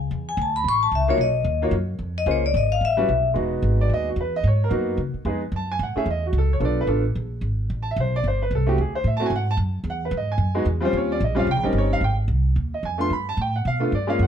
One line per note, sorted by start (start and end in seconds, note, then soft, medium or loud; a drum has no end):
0.00 0.10 C#2 medium
0.11 0.37 E2 medium
0.29 0.38 G#5 medium
0.37 0.64 D2 medium
0.42 0.56 A5 medium
0.56 0.66 B5 loud
0.64 0.91 A1 medium
0.69 0.83 C#6 loud
0.83 0.92 A5 medium
0.91 1.17 C#2 medium
0.91 1.09 E5 medium
1.08 1.18 A#3 medium
1.08 1.18 D#4 medium
1.08 1.18 F4 medium
1.08 1.19 F#4 medium
1.08 1.18 C#5 medium
1.08 1.20 C#5 medium
1.18 1.44 B1 medium
1.18 1.60 D#5 medium
1.44 1.71 D#2 medium
1.62 1.72 A#3 medium
1.62 1.72 D#4 medium
1.62 1.72 F4 medium
1.62 1.72 F#4 medium
1.62 1.72 C#5 medium
1.71 1.98 F#2 medium
1.99 2.26 F2 medium
2.18 2.28 D#5 loud
2.26 2.53 C#2 medium
2.26 2.42 A#3 medium
2.26 2.41 C#4 medium
2.26 2.42 F4 medium
2.26 2.42 G#4 medium
2.26 2.42 C5 medium
2.31 2.45 C#5 medium
2.46 2.55 D5 medium
2.54 2.80 G#1 medium
2.54 2.71 D#5 medium
2.72 2.82 F5 loud
2.81 3.07 A1 medium
2.85 3.29 E5 medium
2.97 3.07 G3 medium
2.97 3.07 C#4 medium
2.97 3.07 E4 medium
2.97 3.07 F#4 medium
2.97 3.07 B4 medium
3.09 3.35 B1 medium
3.34 3.62 E1 medium
3.34 4.09 G#3 medium
3.34 4.10 B3 medium
3.34 4.10 D#4 medium
3.34 4.08 F#4 medium
3.62 3.89 G#1 medium
3.81 3.90 D5 medium
3.90 4.15 D#2 medium
3.94 4.07 D#5 medium
4.09 4.18 F#4 medium
4.16 4.43 E2 medium
4.20 4.34 B4 medium
4.36 4.45 D#5 medium
4.43 4.70 G#2 medium
4.43 4.61 C#5 medium
4.64 4.69 A#4 medium
4.69 4.97 F#2 medium
4.69 4.97 A#3 medium
4.69 4.98 B3 medium
4.69 4.98 D#4 medium
4.69 4.98 F#4 medium
4.97 5.13 C#3 medium
5.14 muted upright bass stroke soft
5.25 5.51 F2 medium
5.25 5.40 G#3 medium
5.25 5.40 B3 medium
5.25 5.40 D#4 medium
5.25 5.41 G#4 medium
5.52 5.78 F#2 medium
5.56 5.70 A5 medium
5.72 5.80 G#5 loud
5.79 5.94 G#2 medium
5.79 5.97 F#5 medium
5.96 6.05 A3 medium
5.96 6.05 C#4 medium
5.96 6.06 E4 medium
5.96 6.06 G#4 medium
5.96 6.07 E5 medium
5.96 muted upright bass stroke soft
6.06 6.32 E2 medium
6.10 6.24 D#5 medium
6.26 6.35 F#4 medium
6.33 6.59 C#2 medium
6.38 6.52 A4 medium
6.53 6.62 C#5 medium
6.60 6.87 B1 medium
6.60 6.85 B3 medium
6.60 6.86 D4 medium
6.60 6.86 F4 medium
6.60 6.87 A4 medium
6.65 6.79 D5 medium
6.81 6.86 B4 medium
6.87 7.14 A1 medium
6.87 7.02 B3 medium
6.87 7.02 D4 medium
6.87 7.02 F4 medium
6.87 7.03 A4 medium
7.15 7.41 A#1 medium
7.41 7.68 G#1 medium
7.70 7.95 A1 medium
7.83 7.89 A5 medium
7.91 7.98 E5 medium
7.96 8.22 B1 medium
7.96 8.14 C5 medium
8.16 8.25 D5 medium
8.24 8.50 G1 medium
8.24 8.41 C5 medium
8.42 8.51 B4 medium
8.51 8.76 C2 medium
8.55 8.68 A4 medium
8.67 8.76 A3 medium
8.67 8.76 C4 medium
8.67 8.76 E4 medium
8.67 8.76 F#4 medium
8.67 8.78 G4 medium
8.78 9.04 D2 medium
8.78 8.95 G#4 medium
8.95 9.05 C5 medium
9.04 9.29 A2 medium
9.04 9.14 E5 medium
9.17 9.30 A3 medium
9.17 9.30 C4 medium
9.17 9.30 E4 medium
9.17 9.24 A5 medium
9.21 9.30 F#4 medium
9.26 9.33 G#5 medium
9.30 9.56 G#2 medium
9.36 9.49 F#5 medium
9.51 9.56 A5 loud
9.57 9.83 F#2 medium
9.84 10.11 E2 medium
9.90 10.03 F#5 medium
10.05 10.14 B4 medium
10.11 10.37 G#2 medium
10.17 10.31 D#5 medium
10.32 10.65 G#5 medium
10.38 10.65 F#2 medium
10.55 10.65 G#3 medium
10.55 10.65 B3 medium
10.55 10.65 D#4 medium
10.55 10.65 F#4 medium
10.65 10.92 E2 medium
10.80 11.17 G3 medium
10.80 11.17 C4 medium
10.80 11.18 C#4 medium
10.80 11.18 F4 medium
10.85 10.94 C5 medium
10.93 11.19 D#2 medium
10.97 11.11 C#5 medium
11.12 11.21 D5 medium
11.20 11.46 A#1 medium
11.20 11.38 D#5 medium
11.35 11.45 G3 medium
11.35 11.46 C4 medium
11.35 11.46 C#4 medium
11.35 11.46 F4 medium
11.39 11.48 F5 medium
11.47 11.56 C2 medium
11.51 11.65 G5 loud
11.56 11.64 A#1 medium
11.63 11.72 G1 medium
11.63 11.99 G3 medium
11.63 11.99 C4 medium
11.63 11.99 C#4 medium
11.63 11.99 D#4 medium
11.63 11.75 A#4 medium
11.73 12.00 G1 medium
11.78 11.92 C#5 medium
11.93 12.02 F5 loud
12.01 12.27 G#1 medium
12.01 12.13 G5 medium
12.28 12.54 C2 medium
12.56 12.82 D#2 medium
12.74 12.84 D#5 medium
12.83 13.09 F2 medium
12.83 13.00 G#5 medium
12.98 13.08 A3 medium
12.98 13.09 B3 medium
12.98 13.09 D4 medium
12.98 13.09 F4 medium
12.98 13.10 C6 loud
13.10 13.36 G2 medium
13.10 13.27 B5 medium
13.29 13.38 A5 loud
13.37 13.63 A2 medium
13.41 13.55 G5 medium
13.56 13.65 F#5 medium
13.65 13.91 B2 medium
13.65 13.82 F5 medium
13.80 13.90 A3 medium
13.80 13.90 B3 medium
13.80 13.90 D4 medium
13.80 13.90 F4 medium
13.80 13.92 A4 medium
13.92 14.18 G2 medium
13.92 14.09 D5 medium
14.07 14.27 G#3 medium
14.07 14.27 A#3 medium
14.07 14.27 C#4 medium
14.07 14.27 F4 medium
14.07 14.19 F5 medium
14.19 14.27 F#2 medium
14.19 14.27 F#5 medium